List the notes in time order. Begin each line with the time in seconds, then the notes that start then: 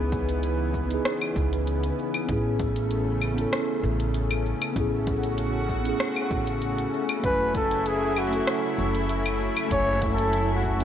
Already playing: C#2 C#3 E3 B3 D#4 E4 G#4 B4
0.12 kick, closed hi-hat, shaker
0.29 closed hi-hat, shaker
0.43 closed hi-hat, shaker
0.74 kick, shaker
0.87 B3 D#4, closed hi-hat
0.91 E4 G#4, shaker
1.05 cross-stick, closed hi-hat, shaker
1.21 claves
1.36 C#2, kick, shaker
1.53 closed hi-hat, shaker
1.67 closed hi-hat, shaker
1.83 closed hi-hat
1.99 shaker
2.14 closed hi-hat, claves, shaker
2.25 A1 A3 B3 C#4, kick, closed hi-hat
2.30 E4 G#4, shaker
2.60 kick, closed hi-hat, shaker
2.76 closed hi-hat, shaker
2.91 closed hi-hat, shaker
3.22 claves, shaker
3.34 B3 C#4
3.38 E4 A4, closed hi-hat, shaker
3.53 cross-stick, closed hi-hat, shaker
3.83 A1, shaker
4.00 closed hi-hat, shaker
4.14 closed hi-hat, shaker
4.31 closed hi-hat, claves
4.46 shaker
4.62 closed hi-hat, claves, shaker
4.72 A1 B3 C#4 F#4, kick, closed hi-hat
4.77 E4 G#4, shaker
5.07 kick, closed hi-hat, shaker
5.23 closed hi-hat, shaker
5.38 closed hi-hat, shaker
5.69 kick, shaker
5.81 B3 C#4, closed hi-hat
5.86 E4 G#4, shaker
6.00 cross-stick, closed hi-hat, shaker
6.16 claves
6.31 A1, kick, shaker
6.47 closed hi-hat, shaker
6.62 closed hi-hat, shaker
6.78 closed hi-hat
6.94 shaker
7.09 closed hi-hat, claves, shaker
7.20 A3 C#4
7.24 F#1 F#3 E4 B4 G#5, kick, closed hi-hat, shaker
7.55 A4, kick, closed hi-hat, shaker
7.71 closed hi-hat, shaker
7.86 G#4, closed hi-hat, shaker
8.16 F#4, claves, shaker
8.29 A3 C#4
8.33 E4 A4, closed hi-hat, shaker
8.47 cross-stick, closed hi-hat, shaker
8.78 F#1, shaker
8.95 closed hi-hat, shaker
9.09 closed hi-hat, shaker
9.26 closed hi-hat, claves
9.41 shaker
9.57 closed hi-hat, claves, shaker
9.67 A3 C#4
9.71 F#1 E4 C#5 G#5, kick, closed hi-hat, shaker
10.02 kick, closed hi-hat, shaker
10.14 A4
10.18 closed hi-hat, shaker
10.33 closed hi-hat, shaker
10.54 F#4
10.64 kick, shaker
10.76 A3 C#4, closed hi-hat